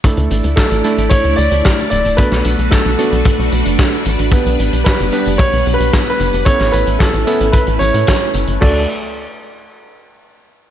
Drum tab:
CC |----------------|----------------|----------------|----------------|
HH |xxxxxxxxxxxxxxxx|xxxxxxxxxxxxxxxx|xxxxxxxxxxxxxxxx|xxxxxxxxxxxxxxxx|
TB |xxxxxxxxxxxxxxxx|xxxxxxxxxxxxxxxx|xxxxxxxxxxxxxxxx|xxxxxxxxxxxxxxxx|
SD |----o-------o---|-o--o-------o---|----o-------o---|-o--o-------o---|
BD |o---o---o---o---|o---o---o---o---|o---o---o---o---|o---o---o---o---|

CC |x---------------|
HH |----------------|
TB |----------------|
SD |----------------|
BD |o---------------|